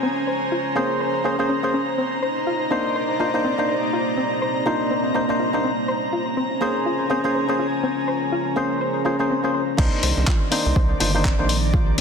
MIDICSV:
0, 0, Header, 1, 7, 480
1, 0, Start_track
1, 0, Tempo, 487805
1, 29, Time_signature, 4, 2, 24, 8
1, 11816, End_track
2, 0, Start_track
2, 0, Title_t, "Analog synth pad"
2, 0, Program_c, 0, 89
2, 0, Note_on_c, 0, 61, 77
2, 0, Note_on_c, 0, 72, 77
2, 0, Note_on_c, 0, 80, 73
2, 0, Note_on_c, 0, 82, 83
2, 1948, Note_off_c, 0, 61, 0
2, 1949, Note_off_c, 0, 80, 0
2, 1949, Note_on_c, 0, 63, 89
2, 2402, Note_on_c, 0, 74, 75
2, 5788, Note_off_c, 0, 74, 0
2, 5789, Note_on_c, 0, 61, 76
2, 6193, Note_on_c, 0, 80, 76
2, 7342, Note_off_c, 0, 63, 0
2, 9628, Note_off_c, 0, 80, 0
2, 9629, Note_off_c, 0, 61, 0
2, 9630, Note_on_c, 0, 51, 94
2, 9834, Note_on_c, 0, 74, 99
2, 10396, Note_off_c, 0, 72, 0
2, 11816, Note_off_c, 0, 51, 0
2, 11816, Note_off_c, 0, 74, 0
2, 11816, Note_off_c, 0, 82, 0
2, 11816, End_track
3, 0, Start_track
3, 0, Title_t, "Ambient pad"
3, 0, Program_c, 1, 92
3, 0, Note_on_c, 1, 61, 76
3, 0, Note_on_c, 1, 65, 72
3, 0, Note_on_c, 1, 68, 72
3, 0, Note_on_c, 1, 70, 69
3, 0, Note_on_c, 1, 72, 83
3, 1910, Note_off_c, 1, 61, 0
3, 1910, Note_off_c, 1, 65, 0
3, 1910, Note_off_c, 1, 68, 0
3, 1910, Note_off_c, 1, 70, 0
3, 1911, Note_off_c, 1, 72, 0
3, 1949, Note_on_c, 1, 58, 72
3, 1949, Note_on_c, 1, 60, 80
3, 1949, Note_on_c, 1, 67, 70
3, 1949, Note_on_c, 1, 70, 70
3, 1949, Note_on_c, 1, 74, 81
3, 3850, Note_off_c, 1, 70, 0
3, 3869, Note_on_c, 1, 72, 72
3, 5750, Note_off_c, 1, 58, 0
3, 5750, Note_off_c, 1, 60, 0
3, 5750, Note_off_c, 1, 67, 0
3, 5750, Note_off_c, 1, 74, 0
3, 5789, Note_on_c, 1, 61, 78
3, 5789, Note_on_c, 1, 65, 72
3, 5789, Note_on_c, 1, 68, 70
3, 5789, Note_on_c, 1, 70, 71
3, 9589, Note_off_c, 1, 72, 0
3, 9590, Note_off_c, 1, 61, 0
3, 9590, Note_off_c, 1, 65, 0
3, 9590, Note_off_c, 1, 68, 0
3, 9590, Note_off_c, 1, 70, 0
3, 9628, Note_on_c, 1, 51, 71
3, 9628, Note_on_c, 1, 60, 80
3, 9628, Note_on_c, 1, 67, 70
3, 9628, Note_on_c, 1, 70, 73
3, 9628, Note_on_c, 1, 74, 88
3, 11816, Note_off_c, 1, 51, 0
3, 11816, Note_off_c, 1, 60, 0
3, 11816, Note_off_c, 1, 67, 0
3, 11816, Note_off_c, 1, 70, 0
3, 11816, Note_off_c, 1, 74, 0
3, 11816, End_track
4, 0, Start_track
4, 0, Title_t, "Synth arpeggio sound"
4, 0, Program_c, 2, 84
4, 28, Note_on_c, 2, 60, 100
4, 118, Note_off_c, 2, 60, 0
4, 268, Note_on_c, 2, 72, 80
4, 358, Note_off_c, 2, 72, 0
4, 509, Note_on_c, 2, 65, 82
4, 598, Note_off_c, 2, 65, 0
4, 749, Note_on_c, 2, 60, 101
4, 838, Note_off_c, 2, 60, 0
4, 989, Note_on_c, 2, 72, 85
4, 1078, Note_off_c, 2, 72, 0
4, 1229, Note_on_c, 2, 72, 75
4, 1363, Note_off_c, 2, 72, 0
4, 1469, Note_on_c, 2, 61, 101
4, 1603, Note_off_c, 2, 61, 0
4, 1709, Note_on_c, 2, 61, 98
4, 1843, Note_off_c, 2, 61, 0
4, 1949, Note_on_c, 2, 60, 98
4, 2038, Note_off_c, 2, 60, 0
4, 2189, Note_on_c, 2, 72, 80
4, 2278, Note_off_c, 2, 72, 0
4, 2429, Note_on_c, 2, 65, 84
4, 2518, Note_off_c, 2, 65, 0
4, 2669, Note_on_c, 2, 60, 97
4, 2758, Note_off_c, 2, 60, 0
4, 2909, Note_on_c, 2, 72, 82
4, 2998, Note_off_c, 2, 72, 0
4, 3149, Note_on_c, 2, 65, 73
4, 3238, Note_off_c, 2, 65, 0
4, 3388, Note_on_c, 2, 60, 97
4, 3478, Note_off_c, 2, 60, 0
4, 3628, Note_on_c, 2, 72, 74
4, 3718, Note_off_c, 2, 72, 0
4, 3868, Note_on_c, 2, 65, 85
4, 3958, Note_off_c, 2, 65, 0
4, 4108, Note_on_c, 2, 60, 107
4, 4197, Note_off_c, 2, 60, 0
4, 4348, Note_on_c, 2, 72, 86
4, 4438, Note_off_c, 2, 72, 0
4, 4588, Note_on_c, 2, 65, 77
4, 4678, Note_off_c, 2, 65, 0
4, 4828, Note_on_c, 2, 60, 98
4, 4918, Note_off_c, 2, 60, 0
4, 5068, Note_on_c, 2, 72, 73
4, 5157, Note_off_c, 2, 72, 0
4, 5308, Note_on_c, 2, 65, 80
4, 5398, Note_off_c, 2, 65, 0
4, 5548, Note_on_c, 2, 60, 98
4, 5638, Note_off_c, 2, 60, 0
4, 5788, Note_on_c, 2, 72, 81
4, 5878, Note_off_c, 2, 72, 0
4, 6028, Note_on_c, 2, 65, 83
4, 6118, Note_off_c, 2, 65, 0
4, 6268, Note_on_c, 2, 60, 106
4, 6358, Note_off_c, 2, 60, 0
4, 6508, Note_on_c, 2, 72, 76
4, 6598, Note_off_c, 2, 72, 0
4, 6748, Note_on_c, 2, 65, 81
4, 6838, Note_off_c, 2, 65, 0
4, 6988, Note_on_c, 2, 60, 99
4, 7078, Note_off_c, 2, 60, 0
4, 7228, Note_on_c, 2, 72, 79
4, 7318, Note_off_c, 2, 72, 0
4, 7468, Note_on_c, 2, 65, 73
4, 7558, Note_off_c, 2, 65, 0
4, 7708, Note_on_c, 2, 60, 100
4, 7798, Note_off_c, 2, 60, 0
4, 7948, Note_on_c, 2, 72, 79
4, 8038, Note_off_c, 2, 72, 0
4, 8189, Note_on_c, 2, 65, 88
4, 8278, Note_off_c, 2, 65, 0
4, 8428, Note_on_c, 2, 60, 100
4, 8518, Note_off_c, 2, 60, 0
4, 8668, Note_on_c, 2, 72, 80
4, 8758, Note_off_c, 2, 72, 0
4, 8908, Note_on_c, 2, 65, 74
4, 8998, Note_off_c, 2, 65, 0
4, 9148, Note_on_c, 2, 60, 98
4, 9238, Note_off_c, 2, 60, 0
4, 9389, Note_on_c, 2, 72, 73
4, 9478, Note_off_c, 2, 72, 0
4, 9629, Note_on_c, 2, 60, 104
4, 9718, Note_off_c, 2, 60, 0
4, 9869, Note_on_c, 2, 72, 81
4, 9958, Note_off_c, 2, 72, 0
4, 10109, Note_on_c, 2, 65, 90
4, 10198, Note_off_c, 2, 65, 0
4, 10348, Note_on_c, 2, 60, 102
4, 10438, Note_off_c, 2, 60, 0
4, 10589, Note_on_c, 2, 72, 85
4, 10678, Note_off_c, 2, 72, 0
4, 10828, Note_on_c, 2, 65, 74
4, 10918, Note_off_c, 2, 65, 0
4, 11068, Note_on_c, 2, 60, 100
4, 11158, Note_off_c, 2, 60, 0
4, 11308, Note_on_c, 2, 72, 78
4, 11398, Note_off_c, 2, 72, 0
4, 11548, Note_on_c, 2, 65, 83
4, 11638, Note_off_c, 2, 65, 0
4, 11816, End_track
5, 0, Start_track
5, 0, Title_t, "Synth stab"
5, 0, Program_c, 3, 62
5, 743, Note_on_c, 3, 58, 91
5, 746, Note_on_c, 3, 61, 84
5, 750, Note_on_c, 3, 68, 86
5, 753, Note_on_c, 3, 72, 105
5, 1202, Note_off_c, 3, 58, 0
5, 1204, Note_off_c, 3, 61, 0
5, 1206, Note_off_c, 3, 68, 0
5, 1207, Note_off_c, 3, 72, 0
5, 1223, Note_on_c, 3, 58, 84
5, 1227, Note_on_c, 3, 61, 74
5, 1230, Note_on_c, 3, 68, 72
5, 1234, Note_on_c, 3, 72, 87
5, 1334, Note_off_c, 3, 58, 0
5, 1336, Note_off_c, 3, 61, 0
5, 1337, Note_off_c, 3, 68, 0
5, 1339, Note_off_c, 3, 72, 0
5, 1365, Note_on_c, 3, 58, 92
5, 1369, Note_on_c, 3, 61, 82
5, 1373, Note_on_c, 3, 68, 84
5, 1376, Note_on_c, 3, 72, 101
5, 1574, Note_off_c, 3, 58, 0
5, 1576, Note_off_c, 3, 61, 0
5, 1577, Note_off_c, 3, 68, 0
5, 1579, Note_off_c, 3, 72, 0
5, 1605, Note_on_c, 3, 58, 86
5, 1608, Note_on_c, 3, 61, 78
5, 1612, Note_on_c, 3, 68, 78
5, 1616, Note_on_c, 3, 72, 97
5, 1782, Note_off_c, 3, 58, 0
5, 1783, Note_off_c, 3, 61, 0
5, 1785, Note_off_c, 3, 68, 0
5, 1787, Note_off_c, 3, 72, 0
5, 2663, Note_on_c, 3, 58, 97
5, 2666, Note_on_c, 3, 62, 82
5, 2670, Note_on_c, 3, 63, 81
5, 2673, Note_on_c, 3, 72, 101
5, 3122, Note_off_c, 3, 58, 0
5, 3124, Note_off_c, 3, 62, 0
5, 3126, Note_off_c, 3, 63, 0
5, 3127, Note_off_c, 3, 72, 0
5, 3143, Note_on_c, 3, 58, 80
5, 3146, Note_on_c, 3, 62, 74
5, 3150, Note_on_c, 3, 63, 76
5, 3154, Note_on_c, 3, 72, 87
5, 3254, Note_off_c, 3, 58, 0
5, 3256, Note_off_c, 3, 62, 0
5, 3257, Note_off_c, 3, 63, 0
5, 3259, Note_off_c, 3, 72, 0
5, 3285, Note_on_c, 3, 58, 92
5, 3288, Note_on_c, 3, 62, 82
5, 3292, Note_on_c, 3, 63, 85
5, 3296, Note_on_c, 3, 72, 100
5, 3494, Note_off_c, 3, 58, 0
5, 3495, Note_off_c, 3, 62, 0
5, 3497, Note_off_c, 3, 63, 0
5, 3499, Note_off_c, 3, 72, 0
5, 3525, Note_on_c, 3, 58, 85
5, 3528, Note_on_c, 3, 62, 79
5, 3532, Note_on_c, 3, 63, 78
5, 3536, Note_on_c, 3, 72, 94
5, 3702, Note_off_c, 3, 58, 0
5, 3703, Note_off_c, 3, 62, 0
5, 3705, Note_off_c, 3, 63, 0
5, 3707, Note_off_c, 3, 72, 0
5, 4583, Note_on_c, 3, 58, 94
5, 4586, Note_on_c, 3, 62, 85
5, 4590, Note_on_c, 3, 63, 86
5, 4594, Note_on_c, 3, 72, 103
5, 5042, Note_off_c, 3, 58, 0
5, 5044, Note_off_c, 3, 62, 0
5, 5046, Note_off_c, 3, 63, 0
5, 5048, Note_off_c, 3, 72, 0
5, 5063, Note_on_c, 3, 58, 79
5, 5066, Note_on_c, 3, 62, 74
5, 5070, Note_on_c, 3, 63, 77
5, 5074, Note_on_c, 3, 72, 89
5, 5174, Note_off_c, 3, 58, 0
5, 5175, Note_off_c, 3, 62, 0
5, 5177, Note_off_c, 3, 63, 0
5, 5179, Note_off_c, 3, 72, 0
5, 5205, Note_on_c, 3, 58, 91
5, 5209, Note_on_c, 3, 62, 82
5, 5212, Note_on_c, 3, 63, 79
5, 5216, Note_on_c, 3, 72, 99
5, 5414, Note_off_c, 3, 58, 0
5, 5415, Note_off_c, 3, 62, 0
5, 5417, Note_off_c, 3, 63, 0
5, 5419, Note_off_c, 3, 72, 0
5, 5445, Note_on_c, 3, 58, 85
5, 5448, Note_on_c, 3, 62, 76
5, 5452, Note_on_c, 3, 63, 77
5, 5456, Note_on_c, 3, 72, 91
5, 5621, Note_off_c, 3, 58, 0
5, 5623, Note_off_c, 3, 62, 0
5, 5625, Note_off_c, 3, 63, 0
5, 5627, Note_off_c, 3, 72, 0
5, 6502, Note_on_c, 3, 58, 96
5, 6506, Note_on_c, 3, 61, 84
5, 6510, Note_on_c, 3, 68, 83
5, 6513, Note_on_c, 3, 72, 105
5, 6962, Note_off_c, 3, 58, 0
5, 6964, Note_off_c, 3, 61, 0
5, 6966, Note_off_c, 3, 68, 0
5, 6967, Note_off_c, 3, 72, 0
5, 6983, Note_on_c, 3, 58, 82
5, 6986, Note_on_c, 3, 61, 73
5, 6990, Note_on_c, 3, 68, 77
5, 6993, Note_on_c, 3, 72, 90
5, 7094, Note_off_c, 3, 58, 0
5, 7096, Note_off_c, 3, 61, 0
5, 7097, Note_off_c, 3, 68, 0
5, 7099, Note_off_c, 3, 72, 0
5, 7125, Note_on_c, 3, 58, 92
5, 7128, Note_on_c, 3, 61, 83
5, 7132, Note_on_c, 3, 68, 80
5, 7136, Note_on_c, 3, 72, 99
5, 7334, Note_off_c, 3, 58, 0
5, 7335, Note_off_c, 3, 61, 0
5, 7337, Note_off_c, 3, 68, 0
5, 7339, Note_off_c, 3, 72, 0
5, 7365, Note_on_c, 3, 58, 84
5, 7369, Note_on_c, 3, 61, 77
5, 7373, Note_on_c, 3, 68, 80
5, 7376, Note_on_c, 3, 72, 91
5, 7542, Note_off_c, 3, 58, 0
5, 7544, Note_off_c, 3, 61, 0
5, 7546, Note_off_c, 3, 68, 0
5, 7547, Note_off_c, 3, 72, 0
5, 8423, Note_on_c, 3, 58, 93
5, 8426, Note_on_c, 3, 61, 81
5, 8430, Note_on_c, 3, 68, 86
5, 8434, Note_on_c, 3, 72, 102
5, 8882, Note_off_c, 3, 58, 0
5, 8884, Note_off_c, 3, 61, 0
5, 8886, Note_off_c, 3, 68, 0
5, 8888, Note_off_c, 3, 72, 0
5, 8903, Note_on_c, 3, 58, 79
5, 8906, Note_on_c, 3, 61, 73
5, 8910, Note_on_c, 3, 68, 72
5, 8914, Note_on_c, 3, 72, 88
5, 9014, Note_off_c, 3, 58, 0
5, 9016, Note_off_c, 3, 61, 0
5, 9017, Note_off_c, 3, 68, 0
5, 9019, Note_off_c, 3, 72, 0
5, 9045, Note_on_c, 3, 58, 91
5, 9049, Note_on_c, 3, 61, 84
5, 9052, Note_on_c, 3, 68, 87
5, 9056, Note_on_c, 3, 72, 102
5, 9254, Note_off_c, 3, 58, 0
5, 9256, Note_off_c, 3, 61, 0
5, 9257, Note_off_c, 3, 68, 0
5, 9259, Note_off_c, 3, 72, 0
5, 9285, Note_on_c, 3, 58, 86
5, 9289, Note_on_c, 3, 61, 80
5, 9293, Note_on_c, 3, 68, 78
5, 9296, Note_on_c, 3, 72, 100
5, 9462, Note_off_c, 3, 58, 0
5, 9464, Note_off_c, 3, 61, 0
5, 9466, Note_off_c, 3, 68, 0
5, 9467, Note_off_c, 3, 72, 0
5, 9617, Note_on_c, 3, 58, 96
5, 9624, Note_on_c, 3, 62, 87
5, 9632, Note_on_c, 3, 63, 87
5, 9639, Note_on_c, 3, 72, 107
5, 10304, Note_off_c, 3, 58, 0
5, 10307, Note_off_c, 3, 62, 0
5, 10311, Note_off_c, 3, 63, 0
5, 10314, Note_off_c, 3, 72, 0
5, 10343, Note_on_c, 3, 58, 97
5, 10346, Note_on_c, 3, 62, 89
5, 10350, Note_on_c, 3, 63, 88
5, 10354, Note_on_c, 3, 72, 103
5, 10802, Note_off_c, 3, 58, 0
5, 10804, Note_off_c, 3, 62, 0
5, 10806, Note_off_c, 3, 63, 0
5, 10807, Note_off_c, 3, 72, 0
5, 10823, Note_on_c, 3, 58, 83
5, 10827, Note_on_c, 3, 62, 77
5, 10830, Note_on_c, 3, 63, 76
5, 10834, Note_on_c, 3, 72, 94
5, 10934, Note_off_c, 3, 58, 0
5, 10936, Note_off_c, 3, 62, 0
5, 10937, Note_off_c, 3, 63, 0
5, 10939, Note_off_c, 3, 72, 0
5, 10966, Note_on_c, 3, 58, 94
5, 10969, Note_on_c, 3, 62, 88
5, 10973, Note_on_c, 3, 63, 83
5, 10976, Note_on_c, 3, 72, 102
5, 11174, Note_off_c, 3, 58, 0
5, 11176, Note_off_c, 3, 62, 0
5, 11177, Note_off_c, 3, 63, 0
5, 11179, Note_off_c, 3, 72, 0
5, 11206, Note_on_c, 3, 58, 89
5, 11209, Note_on_c, 3, 62, 81
5, 11213, Note_on_c, 3, 63, 79
5, 11217, Note_on_c, 3, 72, 98
5, 11382, Note_off_c, 3, 58, 0
5, 11384, Note_off_c, 3, 62, 0
5, 11386, Note_off_c, 3, 63, 0
5, 11388, Note_off_c, 3, 72, 0
5, 11816, End_track
6, 0, Start_track
6, 0, Title_t, "Analog synth bass"
6, 0, Program_c, 4, 38
6, 9629, Note_on_c, 4, 36, 99
6, 9724, Note_off_c, 4, 36, 0
6, 9868, Note_on_c, 4, 36, 107
6, 9964, Note_off_c, 4, 36, 0
6, 10010, Note_on_c, 4, 36, 95
6, 10076, Note_off_c, 4, 36, 0
6, 10490, Note_on_c, 4, 36, 81
6, 10556, Note_off_c, 4, 36, 0
6, 10589, Note_on_c, 4, 36, 98
6, 10765, Note_off_c, 4, 36, 0
6, 10828, Note_on_c, 4, 31, 80
6, 11136, Note_off_c, 4, 31, 0
6, 11210, Note_on_c, 4, 34, 106
6, 11737, Note_off_c, 4, 34, 0
6, 11816, End_track
7, 0, Start_track
7, 0, Title_t, "Drums"
7, 9628, Note_on_c, 9, 36, 122
7, 9628, Note_on_c, 9, 49, 97
7, 9726, Note_off_c, 9, 49, 0
7, 9727, Note_off_c, 9, 36, 0
7, 9868, Note_on_c, 9, 46, 110
7, 9967, Note_off_c, 9, 46, 0
7, 10109, Note_on_c, 9, 36, 115
7, 10111, Note_on_c, 9, 39, 120
7, 10207, Note_off_c, 9, 36, 0
7, 10209, Note_off_c, 9, 39, 0
7, 10348, Note_on_c, 9, 46, 103
7, 10447, Note_off_c, 9, 46, 0
7, 10589, Note_on_c, 9, 36, 118
7, 10687, Note_off_c, 9, 36, 0
7, 10828, Note_on_c, 9, 46, 107
7, 10927, Note_off_c, 9, 46, 0
7, 11069, Note_on_c, 9, 36, 118
7, 11071, Note_on_c, 9, 39, 126
7, 11167, Note_off_c, 9, 36, 0
7, 11170, Note_off_c, 9, 39, 0
7, 11308, Note_on_c, 9, 46, 105
7, 11407, Note_off_c, 9, 46, 0
7, 11548, Note_on_c, 9, 36, 127
7, 11647, Note_off_c, 9, 36, 0
7, 11816, End_track
0, 0, End_of_file